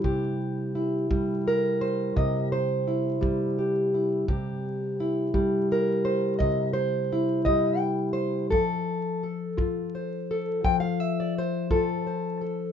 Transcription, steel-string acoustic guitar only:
0.00 1.10 G3 medium
0.00 0.75 E4 soft
0.04 2.16 C3 medium
0.04 1.47 G4 soft
0.75 2.86 E4 soft
1.11 3.20 G3 medium
1.48 2.52 A#4 medium
1.81 2.16 C5 medium
2.16 4.24 C3 medium
2.16 2.52 D#5 medium
2.52 3.58 C5 medium
2.87 3.93 E4 soft
3.21 5.33 G3 medium
3.59 4.24 G4 soft
3.94 4.25 E4 soft
4.29 6.40 C3 medium
4.29 5.70 G4 soft
5.00 7.11 E4 soft
5.34 7.46 G3 medium
5.72 6.77 A#4 medium
6.05 6.38 C5 medium
6.39 8.49 C3 medium
6.39 6.73 D#5 medium
6.73 7.45 C5 medium
7.13 8.49 E4 soft
7.45 8.53 G3 medium
7.45 7.78 D#5 medium
7.78 8.13 G5 medium
8.13 8.50 C5 medium
8.50 10.65 F3 medium
8.50 9.22 A4 medium
9.23 10.30 A4 soft
9.57 11.69 F4 medium
9.95 11.19 C5 soft
10.31 11.70 A4 soft
10.65 12.72 F3 medium
10.65 10.80 G5 medium
10.80 11.00 F5 medium
11.00 11.71 E5 medium
11.20 11.37 D5 medium
11.38 12.06 C5 medium
11.71 12.72 F4 medium
11.71 12.40 A4 medium
12.07 12.72 C5 soft
12.41 12.72 A4 soft

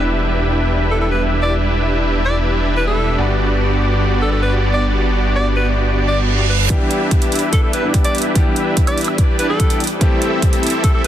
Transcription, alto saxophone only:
0.91 0.97 A4 medium
1.01 1.08 A4 medium
1.11 1.23 B4 medium
1.42 1.54 D5 medium
2.25 2.37 D5 medium
2.77 2.85 B4 medium
2.87 3.18 A4 medium
4.22 4.28 A4 medium
4.32 4.39 A4 medium
4.42 4.54 B4 medium
4.74 4.85 D5 medium
5.36 5.47 D5 medium
5.56 5.68 B4 medium
6.08 6.20 D5 medium
6.49 6.56 B4 medium
6.60 6.66 B4 medium
7.53 7.59 A4 medium
7.63 7.70 A4 medium
7.73 7.85 B4 medium
8.05 8.16 D5 medium
8.87 8.99 D5 medium
9.39 9.47 B4 medium
9.49 9.80 A4 medium
10.84 10.91 A4 medium
10.94 11.01 A4 medium

